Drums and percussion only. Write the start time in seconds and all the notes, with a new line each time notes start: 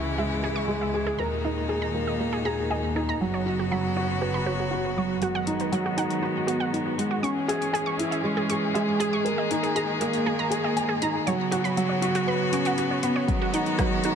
5.22 closed hi-hat
5.47 closed hi-hat
5.60 closed hi-hat
5.73 closed hi-hat
5.98 closed hi-hat
6.10 closed hi-hat
6.48 closed hi-hat
6.74 closed hi-hat
6.99 closed hi-hat
7.24 closed hi-hat
7.49 closed hi-hat
7.62 closed hi-hat
7.75 closed hi-hat
8.00 closed hi-hat
8.12 closed hi-hat
8.50 closed hi-hat
8.75 closed hi-hat
9.00 closed hi-hat
9.26 closed hi-hat
9.51 closed hi-hat
9.64 closed hi-hat
9.76 closed hi-hat
10.01 closed hi-hat
10.13 closed hi-hat
10.52 closed hi-hat
10.77 closed hi-hat
11.02 closed hi-hat
11.27 closed hi-hat
11.52 closed hi-hat
11.65 closed hi-hat
11.77 closed hi-hat
12.02 closed hi-hat
12.15 closed hi-hat
12.53 closed hi-hat
12.65 closed hi-hat
12.78 closed hi-hat
13.03 closed hi-hat
13.28 kick, closed hi-hat
13.54 closed hi-hat
13.66 closed hi-hat
13.79 kick, cross-stick, closed hi-hat
14.04 closed hi-hat